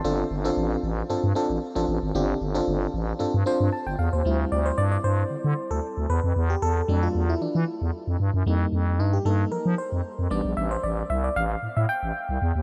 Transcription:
<<
  \new Staff \with { instrumentName = "FM electric piano" } { \time 4/4 \key d \minor \tempo 4 = 114 << { a''16 r2. r8. | r2. a''16 g''16 f''16 c''16~ | c''16 r16 d''16 c''16 d''16 d''16 c''4~ c''16 a'8. b'8~ | b'16 g'16 a'8. f'8 e'16 d'16 e'8 r4 r16 |
r4 ees'16 g'16 a'8 bes'8 c''4 d''8 | e''16 c''16 d''8 e''16 d''16 f''8. e''16 g''4. | } \\ { <c' d' f' a'>8 r16 <c' d' f' a'>8. r8 <c' d' f' a'>16 r16 <c' d' f' a'>8 r16 <c' d' f' a'>8 r16 | <c' d' f' g'>8 r16 <c' d' f' a'>8. r8 <c' d' f' a'>16 r16 <c' d' f' c''>8 r4 | <g c' e'>2.~ <g c' e'>8 r8 | r4 <fis a d'>8 r2 r8 |
<g bes ees'>4. <g bes ees'>8 r4. <g b d'>8 | r1 | } >> }
  \new Staff \with { instrumentName = "FM bass" } { \clef bass \time 4/4 \key d \minor g,,8 g,,8 a,,8 a,,8 g,16 g,16 r16 a,,16 r16 a,,16 a,,16 gis,,16 | g,,8 g,,8 g,,8 a,,8 g,16 g,16 r16 g,16 r16 g,,16 e,16 ees,16 | d,8 d,8 g,8 g,8 d16 d16 r16 d,16 r16 d,16 e,16 f,16 | e,8 e,8 f,8 e,8 e16 e16 r16 e,16 r16 f,16 g,16 fis,16 |
f,8 f,8 g,8 g,8 f16 f16 r16 f,16 r16 f,16 a,,16 bes,,16 | a,,8 a,,8 c,8 a,,8 a,16 a,16 r16 a,,16 r16 c,16 e,16 ees,16 | }
>>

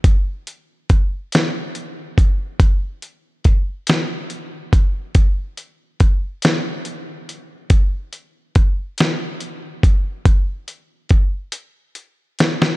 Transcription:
\new DrumStaff \with { instrumentName = "Drums" } \drummode { \time 6/8 \tempo 4. = 47 <hh bd>8 hh8 <hh bd>8 <hh sn>8 hh8 <hh bd>8 | <hh bd>8 hh8 <hh bd>8 <hh sn>8 hh8 <hh bd>8 | <hh bd>8 hh8 <hh bd>8 <hh sn>8 hh8 hh8 | <hh bd>8 hh8 <hh bd>8 <hh sn>8 hh8 <hh bd>8 |
<hh bd>8 hh8 <hh bd>8 hh8 hh8 <hh sn>16 sn16 | }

